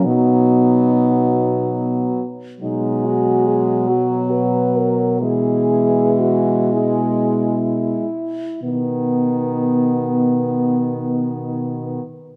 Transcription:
0.05 2.27 B2 soft
0.05 2.23 F#3 soft
0.05 2.23 B3 soft
0.05 2.19 D#4 medium
2.60 8.06 B2 soft
2.60 5.17 F#3 soft
2.60 3.89 G#3 soft
2.60 3.07 D#4 soft
3.05 3.49 F#4 medium
3.47 3.91 G#4 soft
3.87 5.20 F#3 soft
3.87 4.32 F#4 soft
4.31 4.78 B4 soft
4.77 5.22 A#4 medium
5.21 6.70 E3 soft
5.21 8.05 G#3 soft
5.21 6.22 G#4 medium
6.20 6.75 F#4 soft
6.73 7.61 G#3 soft
6.73 8.63 E4 soft
8.63 12.02 B2 soft
8.63 12.01 D#3 soft
8.63 12.02 B3 soft

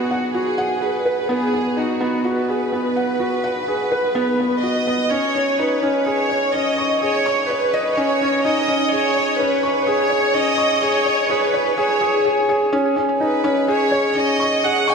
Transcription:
0.00 1.29 B3 medium
0.00 1.77 D#4 medium
0.00 0.35 F#4 medium
0.00 0.82 G#4 medium
0.00 1.05 B4 medium
0.11 0.34 F#5 medium
0.35 0.57 F#4 medium
0.35 0.79 G#4 medium
0.58 0.72 F#5 medium
0.82 1.05 G#4 medium
0.82 1.30 B4 medium
1.05 1.20 B4 medium
1.29 1.52 B3 medium
1.29 1.78 G#4 medium
1.53 1.76 B3 medium
1.77 2.00 D#4 medium
1.77 2.25 F#4 medium
2.01 2.24 B3 medium
2.25 2.48 F#4 medium
2.25 4.63 B4 medium
2.49 2.72 G#4 medium
2.72 2.95 B3 medium
2.96 3.19 F#5 medium
3.20 3.43 F#4 medium
3.44 3.58 F#5 medium
3.68 3.91 G#4 medium
3.92 4.05 B4 medium
4.15 4.38 B3 medium
4.40 4.62 B3 medium
4.63 4.86 F#4 medium
4.63 5.07 D#5 medium
4.87 5.10 B3 medium
5.10 5.33 C#4 medium
5.10 5.58 C#5 loud
5.35 5.58 C#4 medium
5.58 5.81 D#4 medium
5.58 6.06 B4 medium
5.83 6.05 C#4 medium
6.06 6.29 G#4 medium
6.06 6.54 C#5 medium
6.29 6.52 C#5 medium
6.54 6.77 C#4 medium
6.54 7.02 D#5 medium
6.78 7.01 C#6 medium
7.01 7.24 G#4 medium
7.01 7.46 C#5 loud
7.26 7.39 C#6 medium
7.48 7.96 B4 medium
7.48 7.72 C#5 medium
7.74 7.87 D#5 medium
7.95 8.20 C#4 loud
7.95 8.44 C#5 medium
8.21 8.44 C#4 medium
8.44 8.67 D#4 medium
8.44 8.88 D#5 loud
8.68 8.91 C#4 medium
8.91 9.15 G#4 medium
8.91 9.39 C#5 loud
9.16 9.39 C#5 medium
9.38 9.62 C#4 medium
9.38 9.87 B4 medium
9.63 9.85 C#6 medium
9.86 10.10 G#4 medium
9.86 10.34 C#5 medium
10.10 10.33 C#5 medium
10.33 10.57 C#4 medium
10.33 10.82 D#5 loud
10.58 10.80 C#6 medium
10.80 11.05 G#4 medium
10.80 11.29 C#5 loud
11.06 11.28 C#5 medium
11.29 11.53 G#4 medium
11.29 11.77 B4 medium
11.54 11.76 C#5 medium
11.77 12.00 G#4 medium
11.77 12.22 C#5 medium
12.01 12.23 G#4 medium
12.25 12.47 G#4 medium
12.49 12.71 G#4 medium
12.73 12.95 C#4 loud
12.96 13.19 C#4 medium
13.20 13.43 D#4 medium
13.20 13.65 B4 medium
13.44 13.67 C#4 loud
13.68 13.91 G#4 medium
13.68 14.17 C#5 medium
13.91 14.14 C#5 medium
14.15 14.38 C#4 medium
14.15 14.64 D#5 loud
14.40 14.62 C#6 medium
14.64 14.86 G#4 medium
14.64 14.88 F#5 loud
14.88 14.95 G#5 loud
14.88 14.95 C#6 medium

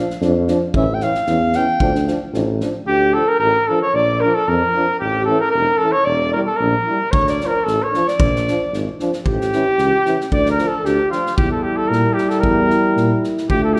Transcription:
0.10 snare soft
0.21 0.50 F2 loud
0.21 0.33 F3 medium
0.21 0.32 D4 medium
0.21 snare soft
0.47 0.59 F3 medium
0.47 0.58 D4 medium
0.47 snare soft
0.74 1.04 A1 medium
0.74 0.86 E3 medium
0.74 0.85 C#4 medium
0.74 0.96 E5 medium
0.74 kick medium
0.94 1.04 G5 medium
1.00 1.13 E3 medium
1.00 1.12 C#4 medium
1.00 1.58 F5 medium
1.00 snare soft
1.15 snare soft
1.27 1.57 E2 medium
1.27 1.38 E3 medium
1.27 1.39 C#4 medium
1.27 snare soft
1.53 1.65 E3 medium
1.53 1.65 C#4 medium
1.53 2.09 G5 medium
1.53 snare soft
1.80 2.10 D2 medium
1.80 1.91 F3 medium
1.80 1.92 D4 medium
1.80 kick loud
1.95 snare soft
2.06 2.17 F3 medium
2.06 2.19 D4 medium
2.06 snare soft
2.32 2.63 A1 medium
2.32 2.43 F3 medium
2.32 2.45 D4 medium
2.32 snare soft
2.60 2.71 F3 medium
2.60 2.72 D4 medium
2.60 snare soft
2.86 3.16 D2 medium
2.86 3.15 G4 loud
2.86 3.17 G4 loud
3.13 3.25 F3 medium
3.13 3.25 D4 medium
3.13 3.30 A4 medium
3.13 3.29 A4 medium
3.28 3.40 A#4 medium
3.28 3.39 A#4 loud
3.39 3.55 A1 medium
3.39 3.69 A#4 loud
3.39 3.70 A#4 medium
3.67 3.80 F3 medium
3.67 3.79 D4 medium
3.67 3.82 A4 medium
3.82 3.97 C#5 medium
3.82 3.96 C#5 medium
3.94 4.23 A#1 medium
3.94 4.22 D5 medium
4.21 4.34 F3 medium
4.21 4.31 D4 medium
4.21 4.36 A#4 medium
4.34 4.50 A4 medium
4.34 4.49 A4 medium
4.48 4.62 F2 loud
4.48 5.00 A#4 medium
4.48 4.99 A#4 loud
4.75 4.86 F3 medium
4.75 4.85 D4 medium
4.99 5.30 A1 medium
4.99 5.24 G4 medium
4.99 5.25 G4 medium
5.25 5.37 C#4 medium
5.25 5.39 A4 medium
5.25 5.40 A4 medium
5.29 5.39 E3 medium
5.40 5.50 A#4 medium
5.40 5.54 A#4 medium
5.51 5.68 F1 medium
5.51 5.79 A#4 loud
5.56 5.85 A#4 medium
5.78 5.90 C#4 medium
5.78 5.93 A4 medium
5.83 5.94 E3 medium
5.83 5.97 A4 medium
5.92 6.06 C#5 medium
5.96 6.10 C#5 medium
6.05 6.35 E1 medium
6.05 6.32 D5 loud
6.05 6.34 D5 medium
6.32 6.46 G3 medium
6.32 6.43 E4 medium
6.32 6.40 A#4 medium
6.32 6.41 A#4 medium
6.46 6.58 A4 medium
6.46 6.62 A4 medium
6.57 6.74 A#1 loud
6.57 7.13 A#4 medium
6.61 7.15 A#4 medium
6.87 6.99 G3 medium
6.87 6.97 E4 medium
7.11 7.42 D2 medium
7.11 7.28 C#5 medium
7.11 7.31 C#5 medium
7.11 kick loud
7.27 7.48 D5 medium
7.27 snare soft
7.32 7.53 D5 medium
7.40 7.53 F3 medium
7.40 7.51 D4 medium
7.40 snare soft
7.47 7.65 A#4 medium
7.51 7.71 A#4 medium
7.64 7.81 A1 medium
7.64 7.84 A4 medium
7.64 snare soft
7.69 7.88 A4 medium
7.83 8.09 C#5 medium
7.83 8.10 C#5 medium
7.92 8.05 F3 medium
7.92 8.02 D4 medium
7.92 snare soft
8.08 8.87 D5 loud
8.08 8.87 D5 medium
8.08 snare soft
8.19 8.48 A#1 medium
8.19 kick loud
8.36 snare soft
8.46 8.59 F3 medium
8.46 8.57 D4 medium
8.46 snare soft
8.72 8.87 G#1 medium
8.72 snare soft
9.00 9.11 F3 medium
9.00 9.10 D4 medium
9.00 snare soft
9.13 snare soft
9.24 9.55 A1 medium
9.24 10.27 G4 medium
9.24 10.28 G4 medium
9.24 kick medium
9.41 snare soft
9.53 9.64 E3 medium
9.53 9.64 C#4 medium
9.53 snare soft
9.78 9.93 C#2 medium
9.78 snare soft
10.06 10.16 E3 medium
10.06 10.16 C#4 medium
10.06 snare soft
10.21 snare soft
10.31 10.60 D2 medium
10.31 10.49 D5 medium
10.31 10.49 D5 loud
10.31 kick medium
10.46 snare soft
10.51 10.69 A#4 medium
10.51 10.71 A#4 medium
10.58 10.69 F3 medium
10.58 10.69 D4 medium
10.58 snare soft
10.67 10.87 A4 medium
10.84 10.99 D2 medium
10.84 11.10 G4 medium
10.84 11.12 G4 medium
10.84 snare soft
11.10 11.22 F3 medium
11.10 11.21 D4 medium
11.10 11.35 F4 medium
11.10 11.37 F4 medium
11.10 snare soft
11.26 snare soft
11.37 11.67 E2 medium
11.37 13.46 G3 medium
11.37 13.46 E4 medium
11.37 11.50 G4 medium
11.37 kick loud
11.51 11.64 A4 medium
11.63 11.78 G4 medium
11.76 11.90 A4 medium
11.88 12.05 A#2 medium
11.88 12.15 A#4 loud
11.92 snare soft
12.13 12.30 G4 medium
12.18 snare soft
12.29 12.40 A4 medium
12.29 snare soft
12.40 12.73 E2 medium
12.40 13.18 A#4 medium
12.40 kick medium
12.70 snare soft
12.96 13.11 A#2 medium
12.96 snare soft
13.24 snare soft
13.38 snare soft
13.50 13.79 D2 medium
13.50 13.80 A3 medium
13.50 13.80 F4 medium
13.50 13.63 G4 medium
13.50 kick medium
13.64 13.75 A4 medium
13.74 13.80 G4 medium
13.74 snare soft

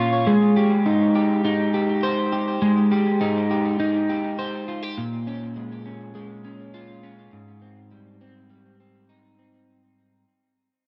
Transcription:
0.00 0.27 A#2 medium
0.00 0.33 C#4 medium
0.00 0.33 F4 medium
0.00 0.33 C#5 medium
0.27 2.61 G#3 medium
0.56 1.14 G4 soft
0.86 1.43 D#4 soft
1.15 1.73 G4 soft
1.45 3.20 D#4 soft
1.74 2.31 G4 medium
2.03 4.37 C5 medium
2.32 2.90 G4 medium
2.62 5.01 G#3 medium
2.91 3.49 G4 soft
3.21 3.78 D#4 medium
3.50 4.08 G4 soft
3.80 5.03 D#4 medium
4.09 4.68 G4 medium
4.39 5.03 C5 medium
4.68 4.83 F4 soft
4.83 5.03 G4 soft
4.98 7.32 A#2 medium
5.27 5.84 C#4 soft
5.56 6.15 G#3 medium
5.86 6.43 C#4 soft
6.15 7.91 G#3 medium
6.44 7.02 C#4 soft
6.74 7.39 F4 medium
7.03 7.38 C#4 soft
7.32 10.24 G#2 medium
7.62 8.21 C4 soft
7.92 8.50 G3 soft
8.21 8.80 C4 soft
8.50 10.24 G3 soft
8.80 9.38 C4 soft
9.09 10.24 D#4 medium
9.39 10.24 C4 soft

